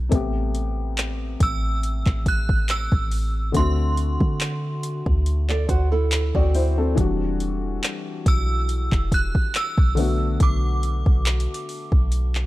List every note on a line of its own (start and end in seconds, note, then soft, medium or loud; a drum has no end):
0.09 1.36 A1 loud
0.09 3.49 C3 medium
0.09 3.50 A3 medium
0.09 3.51 B3 medium
0.09 kick loud
0.09 closed hi-hat medium
0.15 3.52 G4 medium
0.55 closed hi-hat medium
0.97 clap loud
0.97 closed hi-hat medium
1.40 2.04 A1 loud
1.40 2.30 E6 loud
1.40 kick loud
1.40 closed hi-hat medium
1.83 closed hi-hat medium
2.06 2.89 A1 loud
2.06 kick medium
2.06 clap medium
2.26 2.71 F#6 loud
2.26 kick medium
2.26 closed hi-hat medium
2.49 kick loud
2.69 3.58 E6 loud
2.69 clap loud
2.69 closed hi-hat medium
2.92 3.52 A1 loud
2.92 kick medium
3.11 open hi-hat medium
3.52 4.18 D2 loud
3.52 6.92 D3 medium
3.52 6.93 A3 medium
3.52 6.08 C4 medium
3.52 kick loud
3.52 closed hi-hat medium
3.57 6.09 F#4 medium
3.57 5.23 C6 medium
3.97 closed hi-hat medium
4.20 5.03 D3 loud
4.20 kick medium
4.40 clap loud
4.40 closed hi-hat medium
4.83 closed hi-hat medium
5.06 5.66 D2 loud
5.06 kick loud
5.26 closed hi-hat medium
5.49 5.68 A4 medium
5.49 5.68 D5 medium
5.49 clap medium
5.69 6.32 D2 loud
5.69 5.91 F#4 medium
5.69 5.91 C5 medium
5.69 kick medium
5.69 closed hi-hat medium
5.92 6.33 E4 medium
5.92 6.33 A4 medium
6.12 clap loud
6.12 closed hi-hat medium
6.35 6.95 D2 loud
6.35 6.95 C4 medium
6.35 6.94 F#4 medium
6.35 6.54 F#4 medium
6.35 6.54 D5 medium
6.35 kick medium
6.55 6.77 E4 medium
6.55 6.77 C5 medium
6.55 open hi-hat medium
6.78 7.19 C4 medium
6.78 7.19 A4 medium
6.95 7.80 E1 loud
6.95 9.92 E3 medium
6.95 9.93 G3 medium
6.95 9.94 D4 medium
6.95 kick loud
6.95 closed hi-hat medium
7.00 9.95 F#4 medium
7.40 closed hi-hat medium
7.83 clap loud
7.83 closed hi-hat medium
8.26 8.89 B1 loud
8.26 9.15 E6 loud
8.26 kick loud
8.26 closed hi-hat medium
8.69 closed hi-hat medium
8.92 9.33 E1 loud
8.92 kick medium
8.92 clap medium
9.12 9.57 F#6 loud
9.12 kick medium
9.12 closed hi-hat medium
9.35 kick loud
9.55 10.44 E6 loud
9.55 clap loud
9.55 closed hi-hat medium
9.78 10.38 B1 loud
9.78 kick loud
9.95 12.46 D3 medium
9.95 12.46 A3 medium
9.95 12.46 B3 medium
9.95 open hi-hat medium
10.00 12.46 F#4 medium
10.40 11.04 B1 loud
10.40 12.09 D6 medium
10.40 kick loud
10.40 closed hi-hat medium
10.83 closed hi-hat medium
11.06 11.47 B1 loud
11.06 kick medium
11.26 clap loud
11.26 closed hi-hat soft
11.40 closed hi-hat medium
11.54 closed hi-hat medium
11.69 open hi-hat medium
11.92 12.46 B1 loud
11.92 kick medium
12.12 closed hi-hat medium
12.35 clap medium